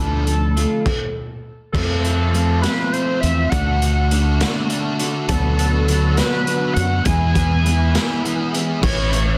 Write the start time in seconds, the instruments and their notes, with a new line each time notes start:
Already playing: fingered electric bass D2, clean electric guitar D3, distorted electric guitar F3 A3
0.00 distorted electric guitar D4, analog synth lead A4
0.27 distorted electric guitar F3 A3, closed hi-hat
0.56 distorted electric guitar F3 A3, clean electric guitar F4, closed hi-hat
0.86 kick, crash
1.72 fingered electric bass F2, clean electric guitar F3, distorted electric guitar A3, analog synth lead A4, kick, crash
1.77 distorted electric guitar C4 F4
2.04 distorted electric guitar C4 F4, closed hi-hat
2.33 clean electric guitar F3, distorted electric guitar A3 C4 F4, closed hi-hat
2.62 distorted electric guitar A3 C4 F4, analog synth lead B4, snare, closed hi-hat
2.67 clean electric guitar F3
2.92 distorted electric guitar A3 C4 F4, analog synth lead C5, closed hi-hat
3.21 fingered electric bass E2, clean electric guitar C4 F4, analog synth lead E5, closed hi-hat
3.25 clean electric guitar A3
3.50 fingered electric bass D2, clean electric guitar D3, distorted electric guitar A3 D4 F#4, analog synth lead F#5, kick, closed hi-hat
3.82 distorted electric guitar D4 F#4, closed hi-hat
4.11 clean electric guitar D3, distorted electric guitar A3 D4 F#4, closed hi-hat
4.40 clean electric guitar D3, distorted electric guitar A3 D4 F#4, snare, closed hi-hat
4.69 distorted electric guitar A3 D4 F#4, closed hi-hat
4.99 clean electric guitar A3 D4 F#4, closed hi-hat
5.28 fingered electric bass D2, clean electric guitar D3, distorted electric guitar F#3 B3 D4 F#4, analog synth lead A4, kick, closed hi-hat
5.59 distorted electric guitar B3 D4 F#4, closed hi-hat
5.88 clean electric guitar D3, distorted electric guitar F#3 B3 D4 F#4, closed hi-hat
6.17 distorted electric guitar F#3 B3 D4 F#4, analog synth lead B4, snare, closed hi-hat
6.21 clean electric guitar D3
6.47 distorted electric guitar F#3 B3 D4 F#4, closed hi-hat
6.73 fingered electric bass F#2, clean electric guitar F#4, analog synth lead F#5, closed hi-hat
6.79 clean electric guitar F#3 B3
7.04 fingered electric bass E2, distorted electric guitar E3 B3 E4 G#4, clean electric guitar G#3, analog synth lead G#5, kick, closed hi-hat
7.35 distorted electric guitar B3 E4 G#4, kick, closed hi-hat
7.65 distorted electric guitar E3 B3 E4 G#4, clean electric guitar G#3, closed hi-hat
7.93 clean electric guitar G#3 E4, distorted electric guitar G#4, snare, closed hi-hat
7.97 distorted electric guitar E3 B3 E4
8.25 distorted electric guitar E3 B3 E4 G#4, closed hi-hat
8.53 clean electric guitar G#3 B3 E4, closed hi-hat
8.81 fingered electric bass A1, clean electric guitar A2 A3 C#4 E4, distorted electric guitar E3, analog synth lead C#5, kick, crash
9.10 distorted electric guitar A3, clean electric guitar C#4 E4, closed hi-hat